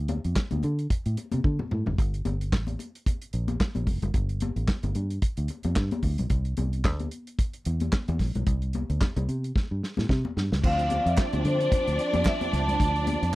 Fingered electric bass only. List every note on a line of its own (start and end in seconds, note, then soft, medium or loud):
0.00 0.17 D2 loud
0.25 0.34 F2 medium
0.52 0.61 D2 loud
0.64 0.86 D3 medium
1.06 1.15 A2 medium
1.33 1.43 C3 medium
1.44 1.57 D3 medium
1.72 1.84 A2 medium
1.87 1.97 F#1 medium
1.99 2.21 G1 medium
2.26 2.53 G1 medium
2.53 2.75 A1 medium
3.34 3.56 A#1 medium
3.76 3.85 A#1 medium
3.87 4.00 F1 medium
4.02 4.12 F#1 medium
4.14 4.49 G1 medium
4.56 4.66 A1 medium
4.83 4.93 G1 loud
4.95 5.18 G2 medium
5.38 5.48 D2 medium
5.65 5.75 F2 medium
5.77 5.89 G2 loud
6.03 6.16 D2 loud
6.19 6.29 B1 medium
6.30 6.53 C2 loud
6.58 6.85 C2 medium
6.85 7.07 D2 medium
7.66 7.89 E2 medium
8.08 8.18 E2 loud
8.20 8.32 A#1 medium
8.35 8.45 B1 medium
8.47 8.82 C2 medium
8.90 9.00 D2 medium
9.16 9.26 C2 loud
9.29 9.51 C3 medium
9.71 9.81 G2 medium
9.98 10.08 A2 medium
10.10 10.22 C3 loud
10.37 10.49 G2 medium
10.52 10.62 C#2 medium
10.64 10.99 D2 loud
11.06 11.16 F2 medium
11.33 11.43 D2 loud
11.45 11.67 D3 medium
11.88 11.97 D2 medium
12.14 12.24 F2 medium
12.53 12.75 C#2 medium
12.80 13.15 D2 loud
13.22 13.32 F2 medium